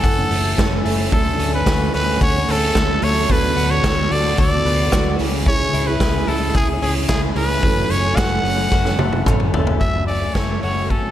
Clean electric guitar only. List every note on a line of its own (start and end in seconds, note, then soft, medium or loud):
0.00 1.13 F#2 medium
0.00 0.57 C#4 medium
0.00 1.66 F#4 medium
0.31 0.84 A3 medium
0.58 1.39 C#4 medium
0.85 2.48 A3 medium
1.12 3.28 D3 medium
1.40 1.93 C#4 medium
1.67 2.21 F#4 medium
1.94 2.74 C#4 medium
2.21 3.35 F#4 medium
2.49 3.02 A3 medium
2.75 3.35 C#4 medium
3.03 3.35 A3 medium
3.30 5.20 D3 medium
3.57 4.10 F#4 medium
3.83 4.37 A4 medium
4.11 4.91 F#4 medium
4.38 5.25 A4 medium
4.66 5.25 B3 medium
4.93 5.25 F#4 medium
5.20 5.46 C#3 medium
5.47 7.64 C#3 medium
5.74 6.27 E4 medium
6.01 6.54 G#4 medium
6.27 7.08 E4 medium
6.55 7.69 G#4 medium
6.82 7.35 C#4 medium
7.08 7.90 E4 medium
7.36 7.90 C#4 medium
7.62 9.79 F#2 medium
7.90 8.44 C#4 medium
8.17 8.72 F#4 medium
8.44 9.26 C#4 medium
8.72 10.64 F#4 medium
9.00 9.54 A3 medium
9.27 10.09 C#4 medium
9.54 10.36 A3 medium
9.81 11.11 F#2 medium
10.09 10.90 C#4 medium
10.36 11.11 A3 medium
10.64 11.11 F#4 medium
10.91 11.11 C#4 medium